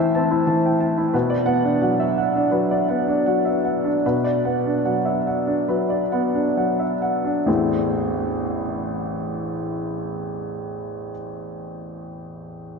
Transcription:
0.00 1.16 A2 medium
0.00 0.47 E3 soft
0.00 0.16 C4 soft
0.00 0.31 E4 soft
0.00 1.16 C5 soft
0.00 1.16 E5 soft
0.00 0.66 G5 soft
0.00 0.15 A5 soft
0.15 0.67 C4 soft
0.15 0.41 A5 soft
0.31 0.57 E4 soft
0.47 1.00 E3 soft
0.47 0.73 A5 soft
0.66 0.81 G5 soft
0.80 1.07 A5 soft
0.98 1.14 E4 soft
1.13 2.49 B2 medium
1.13 1.41 B4 soft
1.30 1.58 D5 soft
1.46 2.02 B3 soft
1.46 1.74 F#5 medium
1.64 1.92 D4 soft
1.82 2.38 F#3 soft
1.82 2.10 F#5 soft
2.00 2.17 E5 soft
2.18 2.46 F#5 soft
2.35 2.64 D4 soft
2.52 3.10 F#3 soft
2.52 2.81 B4 soft
2.71 3.00 D5 soft
2.89 3.49 B3 soft
2.89 3.18 F#5 soft
3.07 3.37 D4 soft
3.26 3.88 F#3 soft
3.26 3.56 F#5 soft
3.45 3.64 E5 soft
3.65 3.95 F#5 soft
3.84 4.15 D4 soft
4.06 5.65 B2 soft
4.06 4.36 B4 soft
4.24 4.56 D5 soft
4.45 5.09 B3 soft
4.45 4.76 F#5 soft
4.66 4.97 D4 soft
4.85 5.51 F#3 soft
4.85 5.18 F#5 soft
5.05 5.26 E5 soft
5.27 5.60 F#5 soft
5.47 5.81 D4 soft
5.68 6.38 F#3 soft
5.68 6.02 B4 soft
5.90 6.24 D5 soft
6.12 6.83 B3 soft
6.12 6.47 F#5 soft
6.34 6.69 D4 soft
6.57 7.29 F#3 soft
6.57 6.92 F#5 soft
6.79 7.01 E5 soft
7.02 7.38 F#5 soft
7.24 7.47 D4 soft
7.46 11.09 A1 soft
7.46 11.10 E2 soft
7.46 11.10 E3 soft
7.46 11.11 A3 soft
7.46 11.11 C4 soft
7.46 11.11 E4 soft

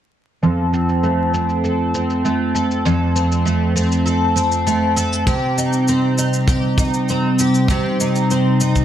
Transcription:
0.43 2.84 F2 medium
0.43 1.63 A4 medium
0.43 shaker soft
0.73 1.33 C4 soft
0.73 shaker medium
0.89 shaker soft
1.03 2.23 A3 medium
1.03 shaker soft
1.34 1.94 C4 soft
1.34 shaker medium
1.49 shaker soft
1.64 2.53 A4 medium
1.64 shaker soft
1.95 3.15 C4 medium
1.95 shaker medium
2.10 shaker soft
2.25 3.44 A3 medium
2.25 shaker soft
2.55 2.85 A4 medium
2.55 shaker medium
2.71 shaker soft
2.85 5.28 F2 medium
2.85 4.04 A4 medium
2.85 shaker soft
3.16 3.75 C4 medium
3.16 shaker medium
3.32 shaker soft
3.45 4.65 A3 medium
3.45 shaker soft
3.76 4.35 C4 medium
3.76 shaker medium
3.92 shaker soft
4.06 4.95 A4 medium
4.06 shaker soft
4.36 5.57 C4 medium
4.36 shaker medium
4.52 shaker soft
4.67 5.33 A3 medium
4.67 shaker soft
4.96 5.27 A4 medium
4.96 shaker medium
5.13 shaker soft
5.27 7.69 C3 medium
5.27 8.85 C3 medium
5.27 8.85 G3 medium
5.27 8.85 D#4 medium
5.27 6.47 G4 medium
5.27 kick loud
5.27 shaker soft
5.58 6.17 D#4 soft
5.58 shaker medium
5.73 shaker soft
5.88 7.10 C4 medium
5.88 shaker soft
6.18 6.78 D#4 medium
6.18 shaker medium
6.34 shaker soft
6.48 7.39 G4 medium
6.48 kick loud
6.48 shaker soft
6.78 7.99 D#4 medium
6.78 kick loud
6.78 shaker medium
6.94 shaker soft
7.09 8.31 C4 medium
7.09 shaker soft
7.39 7.69 G4 medium
7.39 shaker medium
7.54 shaker soft
7.68 8.85 C3 medium
7.68 8.85 G4 medium
7.68 kick loud
7.68 shaker soft
8.00 8.60 D#4 medium
8.00 shaker medium
8.16 shaker soft
8.31 8.85 C4 medium
8.31 shaker soft
8.61 8.85 D#4 medium
8.61 shaker medium
8.76 kick medium
8.76 shaker soft

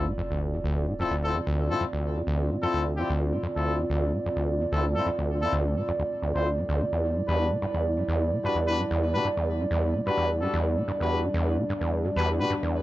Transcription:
0.00 6.88 C4 medium
0.00 6.88 F4 medium
0.00 12.82 D5 medium
0.00 sub drop medium
0.07 0.13 A2 medium
0.18 0.22 F2 medium
0.31 0.55 D2 medium
0.54 0.60 F2 loud
0.64 0.89 D2 loud
0.87 0.94 A2 medium
1.00 1.04 F2 medium
1.00 1.13 C4 medium
1.00 1.13 E4 medium
1.00 1.13 F4 medium
1.00 1.13 A4 medium
1.11 1.36 D2 medium
1.23 1.36 C4 medium
1.23 1.36 E4 medium
1.23 1.36 F4 medium
1.23 1.36 A4 medium
1.34 1.41 F2 loud
1.47 1.72 D2 medium
1.70 1.76 A2 medium
1.70 1.83 C4 medium
1.70 1.83 E4 medium
1.70 1.83 F4 medium
1.70 1.83 A4 loud
1.81 1.85 F2 medium
1.93 2.18 D2 medium
2.17 2.22 F2 loud
2.27 2.52 D2 loud
2.51 2.57 A2 medium
2.63 2.67 F2 medium
2.63 2.85 C4 medium
2.63 2.85 E4 medium
2.63 2.85 F4 medium
2.63 2.85 A4 loud
2.74 2.99 D2 medium
2.97 3.04 F2 loud
2.97 3.11 C4 medium
2.97 3.11 E4 medium
2.97 3.11 F4 medium
2.97 3.11 G4 medium
3.10 3.34 D2 medium
3.33 3.39 A2 medium
3.43 3.48 F2 medium
3.56 3.81 D2 medium
3.56 3.78 C4 medium
3.56 3.78 E4 medium
3.56 3.78 F4 medium
3.56 3.78 A4 medium
3.79 3.85 F2 loud
3.90 4.14 D2 loud
4.13 4.20 A2 medium
4.26 4.29 F2 medium
4.36 4.61 D2 medium
4.60 4.67 F2 medium
4.72 4.97 D2 loud
4.72 4.85 C4 medium
4.72 4.85 E4 medium
4.72 4.85 F4 medium
4.72 4.85 A4 medium
4.95 5.02 A2 medium
4.95 5.08 C4 medium
4.95 5.08 E4 medium
4.95 5.08 F4 medium
4.95 5.08 A4 loud
5.06 5.10 F2 medium
5.19 5.43 D2 medium
5.42 5.48 F2 medium
5.42 5.55 C4 medium
5.42 5.55 E4 medium
5.42 5.55 F4 medium
5.42 5.55 A4 loud
5.53 5.77 D2 medium
5.76 5.83 A2 medium
5.89 5.92 F2 medium
5.99 6.03 D2 medium
6.22 6.33 D2 medium
6.35 6.60 D2 medium
6.35 6.48 C4 medium
6.35 6.48 E4 medium
6.35 6.48 F4 medium
6.35 6.48 C5 medium
6.58 6.64 G2 medium
6.69 6.83 D2 loud
6.81 6.85 D3 loud
6.92 7.17 E2 medium
6.92 12.82 G3 medium
6.92 10.61 E4 medium
7.16 7.23 G2 medium
7.28 7.53 E2 loud
7.28 7.50 D4 medium
7.28 7.50 F#4 medium
7.28 7.50 G4 medium
7.28 7.50 B4 medium
7.51 7.57 B2 medium
7.62 7.66 G2 medium
7.74 7.99 E2 medium
7.98 8.04 G2 loud
8.08 8.33 E2 loud
8.32 8.39 B2 medium
8.44 8.48 G2 medium
8.44 8.57 D4 medium
8.44 8.57 F#4 medium
8.44 8.57 G4 medium
8.44 8.57 B4 medium
8.55 8.80 E2 medium
8.68 8.81 D4 medium
8.68 8.81 F#4 medium
8.68 8.80 G4 medium
8.68 8.80 B4 loud
8.78 8.85 G2 loud
8.91 9.16 E2 loud
9.14 9.20 B2 medium
9.14 9.27 D4 medium
9.14 9.27 F#4 medium
9.14 9.27 G4 medium
9.14 9.27 B4 loud
9.25 9.29 G2 medium
9.37 9.62 E2 medium
9.60 9.66 G2 loud
9.71 9.96 E2 loud
9.94 10.01 B2 medium
10.07 10.10 G2 medium
10.07 10.29 D4 medium
10.07 10.29 F#4 medium
10.07 10.29 G4 medium
10.07 10.29 B4 loud
10.18 10.42 E2 medium
10.41 10.48 G2 loud
10.41 10.56 D4 medium
10.41 10.56 F#4 medium
10.41 10.56 G4 medium
10.41 10.56 A4 medium
10.54 10.79 E2 loud
10.64 12.82 D4 medium
10.77 10.83 B2 medium
10.88 10.92 G2 medium
11.00 11.25 E2 medium
11.00 11.22 D4 medium
11.00 11.22 F#4 medium
11.00 11.22 G4 medium
11.00 11.22 B4 medium
11.24 11.29 G2 loud
11.34 11.59 E2 loud
11.58 11.64 B2 medium
11.70 11.73 G2 medium
11.81 12.05 E2 medium
12.04 12.11 G2 loud
12.16 12.41 E2 loud
12.16 12.29 D4 medium
12.16 12.29 F#4 medium
12.16 12.29 G4 medium
12.16 12.29 B4 loud
12.40 12.46 B2 medium
12.40 12.53 D4 medium
12.40 12.53 F#4 medium
12.40 12.53 G4 medium
12.40 12.53 B4 loud
12.50 12.55 G2 medium
12.63 12.82 E2 medium

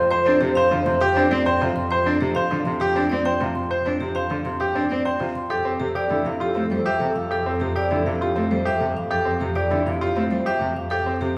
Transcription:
0.00 5.35 F2 medium
0.00 0.15 C6 medium
0.11 0.30 C5 medium
0.19 0.41 C5 medium
0.26 0.45 C4 medium
0.26 0.37 D4 medium
0.41 0.52 C3 medium
0.41 0.60 G4 medium
0.50 0.72 C5 medium
0.55 0.75 C5 medium
0.55 0.75 F5 medium
0.71 0.82 D3 medium
0.71 0.90 F4 medium
0.82 1.04 C5 medium
0.86 0.97 C3 medium
0.86 1.05 C6 medium
1.01 1.20 G4 loud
1.01 1.20 G4 medium
1.13 1.27 D4 medium
1.13 1.35 C5 medium
1.17 1.35 C4 medium
1.31 1.42 C4 medium
1.31 1.50 D5 medium
1.45 1.66 C5 soft
1.45 1.65 C5 medium
1.45 1.65 G5 medium
1.61 1.72 C3 medium
1.61 1.80 F4 medium
1.76 1.95 C6 medium
1.91 2.10 C5 medium
2.06 2.25 C4 medium
2.06 2.17 D4 medium
2.21 2.32 C3 medium
2.21 2.40 G4 medium
2.35 2.55 C5 medium
2.35 2.55 F5 medium
2.51 2.62 D3 medium
2.51 2.70 F4 medium
2.65 2.77 C3 medium
2.65 2.85 C6 medium
2.80 3.00 G4 medium
2.96 3.15 C4 medium
2.96 3.07 D4 medium
3.10 3.22 C4 medium
3.10 3.30 D5 medium
3.25 3.45 C5 medium
3.25 3.45 G5 medium
3.41 3.52 C3 medium
3.41 3.60 F4 medium
3.55 3.75 C6 medium
3.71 3.90 C5 medium
3.86 4.05 C4 medium
3.86 3.97 D4 medium
4.00 4.12 C3 medium
4.00 4.20 G4 medium
4.15 4.35 C5 medium
4.15 4.35 F5 medium
4.30 4.42 D3 medium
4.30 4.50 F4 medium
4.45 4.56 C3 medium
4.45 4.65 C6 medium
4.60 4.80 G4 medium
4.75 4.95 C4 medium
4.75 4.87 D4 medium
4.90 5.02 C4 medium
4.90 5.10 D5 medium
5.05 5.25 C5 medium
5.05 5.25 G5 medium
5.20 5.32 C3 medium
5.20 5.40 F4 medium
5.35 5.55 C6 medium
5.50 11.38 F2 medium
5.50 5.70 G4 medium
5.50 5.70 A4 medium
5.50 5.73 A4 soft
5.65 5.85 C4 medium
5.80 5.91 C3 medium
5.80 6.00 G4 medium
5.80 6.04 A4 soft
5.95 6.15 G4 medium
5.95 6.15 D5 medium
6.10 6.21 D3 medium
6.10 6.30 E4 medium
6.10 6.35 A4 medium
6.25 6.37 C3 medium
6.25 6.45 F5 medium
6.40 6.60 F4 medium
6.40 6.60 G4 medium
6.45 6.67 A4 medium
6.55 6.66 A3 medium
6.55 6.75 C4 medium
6.70 6.82 G3 medium
6.70 6.90 C5 medium
6.77 6.98 A4 medium
6.86 7.05 G4 medium
6.86 7.05 E5 medium
7.00 7.11 C3 medium
7.08 7.30 A4 medium
7.16 7.35 F5 medium
7.31 7.50 G4 medium
7.31 7.50 A4 medium
7.39 7.61 A4 medium
7.46 7.65 C4 medium
7.60 7.72 C3 medium
7.60 7.80 G4 medium
7.71 7.93 A4 medium
7.76 7.95 G4 medium
7.76 7.95 D5 medium
7.91 8.02 D3 medium
7.91 8.10 E4 medium
8.03 8.17 C3 medium
8.03 8.24 A4 medium
8.07 8.25 F5 medium
8.21 8.40 F4 medium
8.21 8.41 G4 medium
8.34 8.47 A3 medium
8.34 8.55 C4 medium
8.34 8.56 A4 soft
8.51 8.62 G3 medium
8.51 8.70 C5 medium
8.65 8.85 G4 medium
8.65 8.87 A4 soft
8.65 8.85 E5 medium
8.81 8.92 C3 medium
8.97 9.15 F5 medium
9.11 9.30 G4 medium
9.11 9.30 A4 medium
9.25 9.45 C4 medium
9.41 9.52 C3 medium
9.41 9.60 G4 medium
9.55 9.75 G4 medium
9.55 9.75 D5 medium
9.71 9.82 D3 medium
9.71 9.90 E4 medium
9.86 9.97 C3 medium
9.86 10.05 F5 medium
10.01 10.20 F4 medium
10.01 10.20 G4 medium
10.16 10.27 A3 medium
10.16 10.35 C4 medium
10.31 10.42 G3 medium
10.31 10.50 C5 medium
10.46 10.65 G4 medium
10.46 10.65 E5 medium
10.60 10.72 C3 medium
10.76 10.95 F5 medium
10.90 11.10 G4 medium
10.90 11.10 A4 medium
11.06 11.25 C4 medium
11.21 11.32 C3 medium
11.21 11.38 G4 medium

